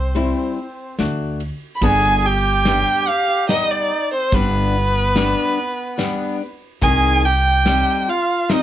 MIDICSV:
0, 0, Header, 1, 6, 480
1, 0, Start_track
1, 0, Tempo, 834492
1, 1051, Time_signature, 3, 2, 24, 8
1, 4962, End_track
2, 0, Start_track
2, 0, Title_t, "Violin"
2, 0, Program_c, 0, 40
2, 0, Note_on_c, 0, 72, 84
2, 551, Note_off_c, 0, 72, 0
2, 1009, Note_on_c, 0, 83, 77
2, 1056, Note_on_c, 0, 80, 119
2, 1065, Note_off_c, 0, 83, 0
2, 1296, Note_on_c, 0, 79, 108
2, 1305, Note_off_c, 0, 80, 0
2, 1771, Note_on_c, 0, 77, 106
2, 1780, Note_off_c, 0, 79, 0
2, 2009, Note_off_c, 0, 77, 0
2, 2013, Note_on_c, 0, 75, 103
2, 2136, Note_on_c, 0, 74, 94
2, 2145, Note_off_c, 0, 75, 0
2, 2374, Note_off_c, 0, 74, 0
2, 2380, Note_on_c, 0, 72, 92
2, 2500, Note_on_c, 0, 71, 104
2, 2509, Note_off_c, 0, 72, 0
2, 3694, Note_off_c, 0, 71, 0
2, 3928, Note_on_c, 0, 80, 127
2, 4168, Note_on_c, 0, 79, 111
2, 4177, Note_off_c, 0, 80, 0
2, 4655, Note_on_c, 0, 77, 90
2, 4664, Note_off_c, 0, 79, 0
2, 4895, Note_on_c, 0, 75, 102
2, 4903, Note_off_c, 0, 77, 0
2, 4962, Note_off_c, 0, 75, 0
2, 4962, End_track
3, 0, Start_track
3, 0, Title_t, "Accordion"
3, 0, Program_c, 1, 21
3, 0, Note_on_c, 1, 60, 71
3, 548, Note_off_c, 1, 60, 0
3, 1051, Note_on_c, 1, 68, 94
3, 1291, Note_on_c, 1, 67, 122
3, 1299, Note_off_c, 1, 68, 0
3, 2004, Note_on_c, 1, 63, 88
3, 2033, Note_off_c, 1, 67, 0
3, 2368, Note_on_c, 1, 60, 78
3, 2379, Note_off_c, 1, 63, 0
3, 2479, Note_on_c, 1, 59, 69
3, 2494, Note_off_c, 1, 60, 0
3, 2522, Note_off_c, 1, 59, 0
3, 2527, Note_on_c, 1, 60, 61
3, 2567, Note_on_c, 1, 59, 78
3, 2569, Note_off_c, 1, 60, 0
3, 3665, Note_off_c, 1, 59, 0
3, 3929, Note_on_c, 1, 68, 102
3, 4152, Note_off_c, 1, 68, 0
3, 4166, Note_on_c, 1, 67, 107
3, 4584, Note_off_c, 1, 67, 0
3, 4607, Note_on_c, 1, 67, 59
3, 4647, Note_on_c, 1, 65, 83
3, 4648, Note_off_c, 1, 67, 0
3, 4891, Note_on_c, 1, 63, 88
3, 4894, Note_off_c, 1, 65, 0
3, 4962, Note_off_c, 1, 63, 0
3, 4962, End_track
4, 0, Start_track
4, 0, Title_t, "Nylon-string guitar"
4, 0, Program_c, 2, 24
4, 85, Note_on_c, 2, 55, 66
4, 88, Note_on_c, 2, 60, 66
4, 94, Note_on_c, 2, 64, 68
4, 328, Note_off_c, 2, 55, 0
4, 329, Note_off_c, 2, 60, 0
4, 332, Note_off_c, 2, 64, 0
4, 568, Note_on_c, 2, 57, 66
4, 571, Note_on_c, 2, 62, 65
4, 574, Note_on_c, 2, 66, 69
4, 810, Note_off_c, 2, 57, 0
4, 811, Note_off_c, 2, 62, 0
4, 813, Note_off_c, 2, 66, 0
4, 1048, Note_on_c, 2, 50, 67
4, 1051, Note_on_c, 2, 59, 72
4, 1053, Note_on_c, 2, 62, 93
4, 1290, Note_off_c, 2, 50, 0
4, 1291, Note_off_c, 2, 59, 0
4, 1293, Note_off_c, 2, 62, 0
4, 1531, Note_on_c, 2, 55, 62
4, 1533, Note_on_c, 2, 59, 57
4, 1539, Note_on_c, 2, 62, 72
4, 1772, Note_off_c, 2, 55, 0
4, 1773, Note_off_c, 2, 59, 0
4, 1776, Note_off_c, 2, 62, 0
4, 2009, Note_on_c, 2, 55, 65
4, 2012, Note_on_c, 2, 59, 64
4, 2019, Note_on_c, 2, 74, 65
4, 2250, Note_off_c, 2, 55, 0
4, 2252, Note_off_c, 2, 59, 0
4, 2256, Note_off_c, 2, 74, 0
4, 2492, Note_on_c, 2, 55, 78
4, 2495, Note_on_c, 2, 59, 70
4, 2497, Note_on_c, 2, 62, 94
4, 2732, Note_off_c, 2, 55, 0
4, 2733, Note_off_c, 2, 59, 0
4, 2734, Note_off_c, 2, 62, 0
4, 2965, Note_on_c, 2, 55, 68
4, 2969, Note_on_c, 2, 62, 77
4, 2972, Note_on_c, 2, 59, 57
4, 3208, Note_off_c, 2, 55, 0
4, 3210, Note_off_c, 2, 62, 0
4, 3211, Note_off_c, 2, 59, 0
4, 3438, Note_on_c, 2, 55, 78
4, 3444, Note_on_c, 2, 62, 80
4, 3445, Note_on_c, 2, 59, 71
4, 3684, Note_off_c, 2, 55, 0
4, 3686, Note_off_c, 2, 59, 0
4, 3687, Note_off_c, 2, 62, 0
4, 3920, Note_on_c, 2, 51, 82
4, 3925, Note_on_c, 2, 60, 80
4, 3929, Note_on_c, 2, 63, 77
4, 4164, Note_off_c, 2, 51, 0
4, 4168, Note_off_c, 2, 60, 0
4, 4168, Note_off_c, 2, 63, 0
4, 4402, Note_on_c, 2, 55, 65
4, 4405, Note_on_c, 2, 60, 65
4, 4411, Note_on_c, 2, 63, 66
4, 4645, Note_off_c, 2, 55, 0
4, 4647, Note_off_c, 2, 60, 0
4, 4649, Note_off_c, 2, 63, 0
4, 4885, Note_on_c, 2, 55, 61
4, 4889, Note_on_c, 2, 60, 66
4, 4889, Note_on_c, 2, 63, 75
4, 4962, Note_off_c, 2, 55, 0
4, 4962, Note_off_c, 2, 60, 0
4, 4962, Note_off_c, 2, 63, 0
4, 4962, End_track
5, 0, Start_track
5, 0, Title_t, "Upright bass"
5, 0, Program_c, 3, 32
5, 0, Note_on_c, 3, 36, 104
5, 184, Note_off_c, 3, 36, 0
5, 569, Note_on_c, 3, 38, 88
5, 858, Note_off_c, 3, 38, 0
5, 1044, Note_on_c, 3, 31, 115
5, 1623, Note_off_c, 3, 31, 0
5, 2485, Note_on_c, 3, 31, 103
5, 3062, Note_off_c, 3, 31, 0
5, 3922, Note_on_c, 3, 36, 106
5, 4500, Note_off_c, 3, 36, 0
5, 4962, End_track
6, 0, Start_track
6, 0, Title_t, "Drums"
6, 89, Note_on_c, 9, 51, 52
6, 147, Note_off_c, 9, 51, 0
6, 567, Note_on_c, 9, 38, 62
6, 567, Note_on_c, 9, 51, 46
6, 625, Note_off_c, 9, 38, 0
6, 625, Note_off_c, 9, 51, 0
6, 806, Note_on_c, 9, 51, 54
6, 863, Note_off_c, 9, 51, 0
6, 1044, Note_on_c, 9, 49, 84
6, 1046, Note_on_c, 9, 36, 80
6, 1101, Note_off_c, 9, 49, 0
6, 1104, Note_off_c, 9, 36, 0
6, 1527, Note_on_c, 9, 38, 81
6, 1527, Note_on_c, 9, 51, 61
6, 1584, Note_off_c, 9, 38, 0
6, 1584, Note_off_c, 9, 51, 0
6, 2008, Note_on_c, 9, 38, 79
6, 2008, Note_on_c, 9, 51, 54
6, 2066, Note_off_c, 9, 38, 0
6, 2066, Note_off_c, 9, 51, 0
6, 2487, Note_on_c, 9, 36, 89
6, 2488, Note_on_c, 9, 51, 46
6, 2545, Note_off_c, 9, 36, 0
6, 2546, Note_off_c, 9, 51, 0
6, 2966, Note_on_c, 9, 38, 80
6, 2966, Note_on_c, 9, 51, 60
6, 3024, Note_off_c, 9, 38, 0
6, 3024, Note_off_c, 9, 51, 0
6, 3445, Note_on_c, 9, 38, 67
6, 3445, Note_on_c, 9, 51, 60
6, 3502, Note_off_c, 9, 38, 0
6, 3502, Note_off_c, 9, 51, 0
6, 3922, Note_on_c, 9, 51, 57
6, 3924, Note_on_c, 9, 36, 83
6, 3980, Note_off_c, 9, 51, 0
6, 3981, Note_off_c, 9, 36, 0
6, 4405, Note_on_c, 9, 38, 86
6, 4405, Note_on_c, 9, 51, 52
6, 4462, Note_off_c, 9, 38, 0
6, 4462, Note_off_c, 9, 51, 0
6, 4887, Note_on_c, 9, 38, 84
6, 4887, Note_on_c, 9, 51, 47
6, 4945, Note_off_c, 9, 38, 0
6, 4945, Note_off_c, 9, 51, 0
6, 4962, End_track
0, 0, End_of_file